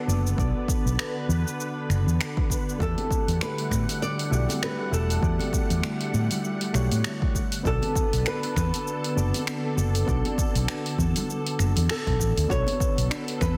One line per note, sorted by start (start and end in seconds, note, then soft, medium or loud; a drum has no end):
0.00 7.31 D3 medium
0.00 0.07 B3 medium
0.00 2.77 B3 medium
0.00 0.07 D4 medium
0.00 0.08 F#4 medium
0.00 0.08 A4 medium
0.00 0.09 D5 medium
0.07 0.32 F#1 medium
0.07 0.34 B3 medium
0.07 0.35 D4 medium
0.07 0.35 F#4 medium
0.07 0.35 A4 medium
0.07 2.78 B4 medium
0.07 0.35 D5 medium
0.07 shaker medium
0.27 shaker soft
0.36 0.52 B1 medium
0.36 1.86 B3 medium
0.36 1.86 D4 medium
0.36 1.86 F#4 medium
0.36 1.87 A4 medium
0.36 1.87 D5 loud
0.36 kick loud
0.36 shaker soft
0.68 kick loud
0.68 shaker medium
0.86 0.96 B1 medium
0.86 shaker soft
0.99 finger snap medium
0.99 shaker soft
1.29 1.42 E2 medium
1.29 shaker medium
1.48 shaker soft
1.60 shaker soft
1.89 2.03 F#1 medium
1.89 finger snap soft
1.89 shaker medium
2.07 2.17 E2 medium
2.07 shaker soft
2.21 finger snap loud
2.21 shaker soft
2.37 kick loud
2.50 kick medium
2.50 shaker medium
2.69 shaker soft
2.79 2.94 E2 medium
2.79 7.31 G3 medium
2.79 4.28 A3 medium
2.79 7.31 A3 medium
2.79 4.28 E4 medium
2.79 4.29 F#4 medium
2.79 4.29 G4 medium
2.79 3.42 A4 medium
2.79 4.30 D5 medium
2.79 7.31 F#5 medium
2.79 kick loud
2.79 shaker soft
2.98 open hi-hat soft
2.98 high conga medium
3.11 kick loud
3.11 shaker medium
3.28 3.38 E2 medium
3.28 open hi-hat soft
3.28 shaker soft
3.41 4.02 B4 loud
3.41 finger snap medium
3.41 shaker soft
3.58 open hi-hat soft
3.71 3.85 A2 loud
3.71 finger snap soft
3.71 kick medium
3.71 high conga medium
3.71 shaker medium
3.89 open hi-hat medium
3.89 shaker soft
4.02 4.63 D5 loud
4.02 shaker soft
4.19 open hi-hat soft
4.31 4.45 B1 medium
4.31 4.89 A3 medium
4.31 4.89 E4 medium
4.31 4.89 F#4 medium
4.31 4.90 G4 medium
4.31 4.90 D5 medium
4.31 shaker medium
4.49 open hi-hat soft
4.49 high conga medium
4.49 shaker soft
4.63 4.93 B4 medium
4.63 finger snap loud
4.63 shaker soft
4.91 5.17 E1 medium
4.91 5.19 A3 medium
4.91 5.19 E4 medium
4.91 5.19 F#4 medium
4.91 5.20 G4 medium
4.91 6.10 A4 medium
4.91 5.20 D5 medium
4.91 shaker medium
5.10 open hi-hat medium
5.10 shaker soft
5.21 5.36 E2 loud
5.21 6.70 A3 medium
5.21 6.71 E4 medium
5.21 6.71 F#4 medium
5.21 6.72 G4 medium
5.21 6.72 D5 loud
5.21 kick loud
5.21 shaker soft
5.39 open hi-hat soft
5.39 high conga medium
5.53 kick loud
5.53 shaker medium
5.70 5.80 E2 medium
5.70 open hi-hat soft
5.70 shaker soft
5.83 finger snap medium
5.83 shaker soft
6.01 open hi-hat soft
6.14 6.27 A2 loud
6.14 high conga medium
6.14 shaker medium
6.31 open hi-hat medium
6.31 low conga medium
6.31 shaker soft
6.44 shaker soft
6.61 open hi-hat soft
6.73 6.88 B1 medium
6.73 7.33 A3 medium
6.73 7.33 E4 medium
6.73 7.33 F#4 medium
6.73 7.33 G4 medium
6.73 7.34 C#5 medium
6.73 finger snap soft
6.73 shaker medium
6.92 7.02 A2 medium
6.92 open hi-hat soft
6.92 high conga medium
6.92 shaker soft
7.04 finger snap medium
7.04 shaker soft
7.22 kick loud
7.35 12.46 D3 medium
7.35 9.75 B3 medium
7.35 12.46 A4 medium
7.35 kick medium
7.35 shaker medium
7.52 open hi-hat medium
7.52 shaker soft
7.63 7.79 B1 medium
7.63 9.13 B3 medium
7.63 9.13 D4 medium
7.63 9.13 F#4 medium
7.63 9.14 A4 medium
7.63 8.27 A4 loud
7.63 9.14 D5 medium
7.63 kick loud
7.63 shaker soft
7.82 open hi-hat soft
7.82 high conga medium
7.95 kick loud
7.95 shaker medium
8.13 8.23 B1 medium
8.13 open hi-hat medium
8.13 shaker soft
8.26 8.56 B4 loud
8.26 finger snap medium
8.26 shaker soft
8.43 open hi-hat soft
8.56 8.70 E2 medium
8.56 11.86 B4 loud
8.56 finger snap soft
8.56 kick medium
8.56 high conga medium
8.56 shaker medium
8.74 open hi-hat medium
8.74 shaker soft
8.87 shaker soft
9.04 open hi-hat soft
9.16 9.30 F#1 medium
9.16 9.74 B3 medium
9.16 9.74 D4 medium
9.16 9.74 F#4 medium
9.16 9.74 A4 medium
9.16 9.75 D5 medium
9.16 shaker medium
9.34 open hi-hat medium
9.34 high conga medium
9.34 shaker soft
9.47 finger snap loud
9.47 shaker soft
9.76 10.02 F#1 medium
9.76 10.04 B3 medium
9.76 10.04 D4 medium
9.76 10.04 F#4 medium
9.76 10.05 A4 medium
9.76 10.05 D5 medium
9.76 shaker medium
9.95 open hi-hat medium
9.95 shaker soft
10.06 10.21 B1 medium
10.06 11.55 B3 loud
10.06 11.56 D4 medium
10.06 11.56 F#4 medium
10.06 11.56 A4 medium
10.06 11.57 D5 loud
10.06 kick loud
10.06 shaker soft
10.25 open hi-hat soft
10.25 high conga medium
10.38 kick loud
10.38 shaker medium
10.55 10.65 B1 medium
10.55 open hi-hat medium
10.55 shaker soft
10.68 finger snap loud
10.68 shaker soft
10.86 open hi-hat soft
10.98 11.12 E2 loud
10.98 kick medium
10.98 high conga medium
10.98 shaker medium
11.16 open hi-hat medium
11.16 low conga medium
11.16 shaker soft
11.30 shaker soft
11.46 open hi-hat soft
11.59 11.73 F#1 medium
11.59 finger snap soft
11.59 shaker medium
11.76 11.87 E2 medium
11.76 open hi-hat medium
11.76 high conga medium
11.76 shaker soft
11.89 12.51 A4 medium
11.89 finger snap loud
11.89 shaker soft
12.07 12.20 B1 loud
12.07 kick loud
12.07 open hi-hat soft
12.20 12.33 A1 medium
12.20 kick medium
12.20 shaker medium
12.37 12.47 D2 loud
12.37 open hi-hat medium
12.37 shaker soft
12.48 12.64 B1 medium
12.48 13.57 D3 medium
12.48 13.57 B3 medium
12.48 13.57 D4 medium
12.48 12.78 F#4 medium
12.48 13.57 F#4 medium
12.48 13.57 A4 medium
12.48 13.57 B4 medium
12.48 13.07 C#5 loud
12.48 kick loud
12.48 shaker soft
12.67 open hi-hat soft
12.67 high conga medium
12.80 kick loud
12.80 shaker medium
12.98 13.08 B1 medium
12.98 open hi-hat medium
12.98 shaker soft
13.10 13.38 D4 medium
13.10 finger snap loud
13.10 shaker soft
13.28 open hi-hat soft
13.41 13.55 E2 medium
13.41 13.57 B4 loud
13.41 finger snap soft
13.41 kick medium
13.41 high conga medium
13.41 shaker medium